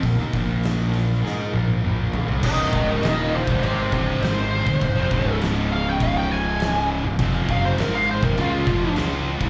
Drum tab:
CC |----------------|x---x---x---x---|x---x---x---x---|x---x---x---x---|
HH |o-o-o-o---------|----------------|----------------|----------------|
SD |----o---o-------|----o-------o---|----o-------o---|----o-------o---|
T1 |----------oo----|----------------|----------------|----------------|
T2 |------------o---|----------------|----------------|----------------|
FT |--------------oo|----------------|----------------|----------------|
BD |o-o-------------|o-o----o--o----o|o-o-----o-------|o-o----o--o----o|